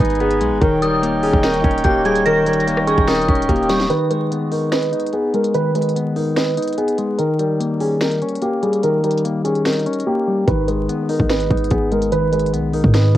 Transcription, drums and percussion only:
0.05 closed hi-hat medium
0.10 closed hi-hat soft
0.15 closed hi-hat soft
0.20 closed hi-hat soft
0.31 closed hi-hat medium
0.41 closed hi-hat medium
0.61 kick loud
0.61 closed hi-hat medium
0.82 closed hi-hat medium
1.03 closed hi-hat medium
1.23 open hi-hat medium
1.33 kick loud
1.43 finger snap medium
1.43 snare loud
1.43 closed hi-hat medium
1.54 closed hi-hat medium
1.64 kick loud
1.64 closed hi-hat soft
1.71 closed hi-hat medium
1.78 closed hi-hat medium
1.84 kick loud
1.84 closed hi-hat medium
2.05 closed hi-hat soft
2.15 closed hi-hat medium
2.26 closed hi-hat medium
2.46 closed hi-hat medium
2.53 closed hi-hat medium
2.60 closed hi-hat soft
2.67 closed hi-hat medium
2.77 cross-stick loud
2.87 closed hi-hat medium
2.87 open hi-hat medium
2.98 kick medium
2.98 closed hi-hat soft
3.07 finger snap medium
3.07 snare loud
3.07 closed hi-hat medium
3.15 closed hi-hat medium
3.22 closed hi-hat soft
3.28 kick loud
3.28 closed hi-hat soft
3.35 closed hi-hat medium
3.42 closed hi-hat medium
3.49 kick medium
3.49 closed hi-hat medium
3.56 closed hi-hat medium
3.63 closed hi-hat soft
3.69 snare loud
3.69 closed hi-hat medium
3.80 snare loud
3.90 closed hi-hat medium
4.11 closed hi-hat medium
4.32 closed hi-hat medium
4.52 open hi-hat medium
4.72 finger snap medium
4.72 snare loud
4.72 closed hi-hat medium
4.83 closed hi-hat medium
4.93 closed hi-hat soft
5.00 closed hi-hat medium
5.07 closed hi-hat medium
5.13 closed hi-hat medium
5.34 closed hi-hat soft
5.44 closed hi-hat medium
5.54 closed hi-hat medium
5.75 closed hi-hat medium
5.82 closed hi-hat medium
5.89 closed hi-hat medium
5.96 closed hi-hat medium
6.16 open hi-hat medium
6.36 finger snap medium
6.36 snare loud
6.36 closed hi-hat medium
6.57 closed hi-hat medium
6.62 closed hi-hat medium
6.68 closed hi-hat soft
6.73 closed hi-hat soft
6.78 closed hi-hat soft
6.88 closed hi-hat medium
6.98 closed hi-hat medium
7.19 closed hi-hat medium
7.39 closed hi-hat medium
7.61 closed hi-hat medium
7.80 open hi-hat medium
8.01 finger snap medium
8.01 snare loud
8.01 closed hi-hat medium
8.11 closed hi-hat medium
8.22 closed hi-hat soft
8.29 closed hi-hat medium
8.35 closed hi-hat medium
8.42 closed hi-hat medium
8.63 closed hi-hat soft
8.73 closed hi-hat medium
8.83 closed hi-hat medium
9.04 closed hi-hat medium
9.11 closed hi-hat medium
9.18 closed hi-hat soft
9.25 closed hi-hat medium
9.45 closed hi-hat medium
9.45 open hi-hat medium
9.55 closed hi-hat soft
9.65 finger snap medium
9.65 snare loud
9.65 closed hi-hat medium
9.72 closed hi-hat medium
9.79 closed hi-hat soft
9.86 closed hi-hat soft
9.93 closed hi-hat medium
10.00 closed hi-hat medium
10.48 kick loud
10.48 closed hi-hat medium
10.68 closed hi-hat medium
10.89 closed hi-hat medium
11.09 open hi-hat medium
11.20 kick loud
11.29 finger snap medium
11.29 snare loud
11.29 closed hi-hat medium
11.40 closed hi-hat medium
11.50 kick loud
11.50 closed hi-hat soft
11.57 closed hi-hat medium
11.64 closed hi-hat medium
11.70 kick medium
11.70 closed hi-hat medium
11.92 closed hi-hat soft
12.02 closed hi-hat medium
12.12 closed hi-hat medium
12.33 closed hi-hat medium
12.40 closed hi-hat medium
12.46 closed hi-hat medium
12.54 closed hi-hat medium
12.74 open hi-hat medium
12.84 kick loud
12.94 finger snap medium
12.94 snare loud
12.94 closed hi-hat medium

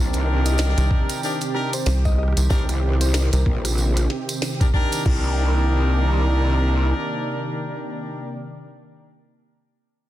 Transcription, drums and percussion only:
0.13 closed hi-hat soft
0.13 tambourine soft
0.46 closed hi-hat medium
0.46 tambourine medium
0.58 snare loud
0.58 tambourine medium
0.78 closed hi-hat medium
0.78 tambourine soft
0.91 kick loud
1.09 closed hi-hat medium
1.09 tambourine medium
1.23 tambourine medium
1.41 closed hi-hat medium
1.41 tambourine soft
1.55 cross-stick soft
1.73 closed hi-hat medium
1.73 tambourine medium
1.86 snare loud
1.86 tambourine medium
2.05 kick medium
2.05 cross-stick soft
2.05 tambourine soft
2.09 cross-stick soft
2.12 cross-stick soft
2.15 cross-stick soft
2.18 cross-stick soft
2.23 cross-stick soft
2.28 cross-stick soft
2.32 cross-stick soft
2.37 closed hi-hat medium
2.37 tambourine medium
2.50 kick loud
2.50 tambourine medium
2.69 cross-stick soft
2.69 closed hi-hat soft
2.69 tambourine soft
3.01 closed hi-hat medium
3.01 tambourine medium
3.14 snare loud
3.14 tambourine medium
3.33 closed hi-hat medium
3.33 tambourine soft
3.46 kick loud
3.65 cross-stick medium
3.65 closed hi-hat medium
3.65 tambourine medium
3.78 tambourine medium
3.97 cross-stick soft
3.97 closed hi-hat medium
3.97 tambourine soft
4.10 snare soft
4.29 closed hi-hat medium
4.29 tambourine medium
4.42 snare loud
4.42 tambourine medium
4.61 kick loud
4.61 closed hi-hat soft
4.61 tambourine soft
4.74 kick medium
4.92 closed hi-hat medium
4.92 tambourine medium
5.06 kick loud
5.06 crash medium

